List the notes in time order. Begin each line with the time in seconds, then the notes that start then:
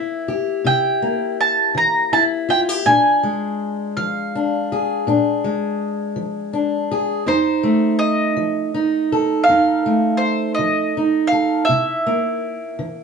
Already playing: E3 A#3 E4 E5
0.28 G4
0.64 C3 E4 G5
1.02 A#3
1.41 A5
1.75 E3 A#5
2.13 E4 A5
2.49 F4 G5
2.69 G4
2.86 A#2 D4 G#5
3.23 G#3
3.97 F3 F5
4.35 D4
4.72 G#4
5.07 A#2 D4
5.44 G#3
6.16 F3
6.53 D4
6.91 G#4
7.26 F2 D#4 C5
7.63 A3
7.99 D#5
8.37 F3
8.74 D#4
9.12 A4
9.44 F5
9.48 F2 D#4
9.86 A3
10.17 C5
10.55 D#5
10.59 F3
10.97 D#4
11.27 F5
11.32 A4
11.65 C3 E5
11.69 E4
12.06 A#3
12.79 E3